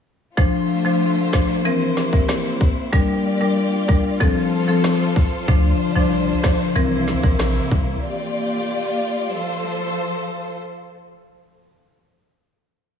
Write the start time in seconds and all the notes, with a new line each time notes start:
0.37 D3 F3 A3 D4 F4 C5, kick
0.85 F3 D4 C5
1.33 F3 D4 C5, kick, cross-stick, snare
1.65 C3 E3 A#3 C4 E4 A#4
1.97 snare
2.13 E3 C4 A#4, kick
2.29 cross-stick, snare
2.61 kick
2.93 G3 D4 F4 G4 A#4 D5, kick
3.41 G3 D4 A#4
3.88 G3 D4 A#4, kick
4.20 F3 C4 A4 C5, kick
4.68 F3 C4 A4
4.84 cross-stick, snare
5.16 kick
5.48 D2 D3 F3 D4 C5, kick
5.96 C2 F3 D4 C5
6.44 F3 D4 C5, kick, cross-stick, snare
6.76 C2 C3 E3 A#3 C4 E4 A#4
7.08 snare
7.23 A#1 E3 C4 A#4, kick
7.39 cross-stick, snare
7.71 C2, kick
8.04 A#3 F4 G4 D5
9.31 F3 A4 C5